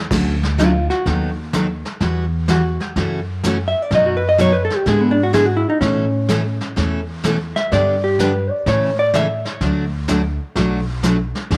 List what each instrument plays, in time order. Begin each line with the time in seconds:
0.11 upright bass D2, steel-string acoustic guitar D3 F#3 A3 C#4 F#4, brush sweep, kick, snare, crash
0.43 snare
0.58 steel-string acoustic guitar D3 F#3 A3 C#4 F#4, hollow-body jazz guitar F4, kick, snare, hi-hat pedal
0.90 hollow-body jazz guitar F#4, snare
1.06 upright bass D#2, steel-string acoustic guitar D#3 F#3 B3 D#4 A4, brush sweep, kick, snare
1.53 steel-string acoustic guitar D#3 F#3 B3 D#4 A4, kick, snare, hi-hat pedal
1.85 snare
2.00 upright bass E2, steel-string acoustic guitar E3 G3 B3 F#4, brush sweep, kick, snare
2.48 steel-string acoustic guitar E3 G3 B3 F#4, hollow-body jazz guitar F#4, kick, snare, hi-hat pedal
2.80 hollow-body jazz guitar G4, snare
2.96 upright bass F#2, steel-string acoustic guitar C#3 E3 A3 C#4 F#4, brush sweep, kick, snare
3.43 steel-string acoustic guitar C#3 E3 A3 C#4 F#4, kick, snare, hi-hat pedal
3.68 hollow-body jazz guitar E5
3.82 hollow-body jazz guitar D5
3.91 upright bass F#2, steel-string acoustic guitar B2 F#3 B3 D#4 F#4, brush sweep, kick, snare
3.95 hollow-body jazz guitar D#5
4.06 hollow-body jazz guitar F#4
4.17 hollow-body jazz guitar B4
4.29 hollow-body jazz guitar D#5
4.38 steel-string acoustic guitar B2 F#3 B3 D#4 F#4, hollow-body jazz guitar C#5, kick, snare, hi-hat pedal
4.52 hollow-body jazz guitar B4
4.65 hollow-body jazz guitar A4
4.70 snare
4.76 hollow-body jazz guitar G4
4.86 upright bass G#2, steel-string acoustic guitar D3 G#3 B3 E4 G#4, hollow-body jazz guitar G#4, brush sweep, kick, snare
5.01 hollow-body jazz guitar B3
5.11 hollow-body jazz guitar D4
5.23 hollow-body jazz guitar F#4
5.33 steel-string acoustic guitar D3 G#3 B3 E4 G#4, hollow-body jazz guitar G#4, kick, snare, hi-hat pedal
5.46 hollow-body jazz guitar F#4
5.57 hollow-body jazz guitar E4
5.70 hollow-body jazz guitar D#4
5.81 upright bass A2, steel-string acoustic guitar B2 E3 A3 C#4 A4, hollow-body jazz guitar C#4, brush sweep, kick, snare
6.29 steel-string acoustic guitar B2 E3 A3 C#4 A4, kick, snare, hi-hat pedal
6.61 snare
6.76 upright bass E2, steel-string acoustic guitar B2 E3 A3 C#4 A4, brush sweep, kick, snare
7.24 steel-string acoustic guitar B2 E3 A3 C#4 A4, kick, snare, hi-hat pedal
7.56 hollow-body jazz guitar E5, snare
7.72 upright bass G2, steel-string acoustic guitar D3 G3 B3 D4 G4, hollow-body jazz guitar D5, brush sweep, kick, snare
8.04 hollow-body jazz guitar G4
8.19 steel-string acoustic guitar D3 G3 B3 D4 G4, hollow-body jazz guitar B4, kick, snare, hi-hat pedal
8.51 hollow-body jazz guitar D5
8.66 upright bass A2, steel-string acoustic guitar C#3 E3 A3 C#4 A4, hollow-body jazz guitar C#5, brush sweep, kick, snare
8.99 hollow-body jazz guitar D5
9.14 steel-string acoustic guitar C#3 E3 A3 C#4 A4, hollow-body jazz guitar E5, kick, snare, hi-hat pedal
9.45 hollow-body jazz guitar C#5, snare
9.61 upright bass D2, steel-string acoustic guitar D3 F#3 A3 D4 F#4, hollow-body jazz guitar D5, brush sweep, kick, snare
10.08 steel-string acoustic guitar D3 F#3 A3 D4 F#4, kick, snare, hi-hat pedal
10.55 upright bass B1, steel-string acoustic guitar B2 F#3 A3 D4 F#4, brush sweep, kick, snare
11.03 steel-string acoustic guitar B2 F#3 A3 D4 F#4, kick, snare, hi-hat pedal
11.35 snare
11.51 upright bass E2, steel-string acoustic guitar E3 B3 D4 G#4, brush sweep, kick, snare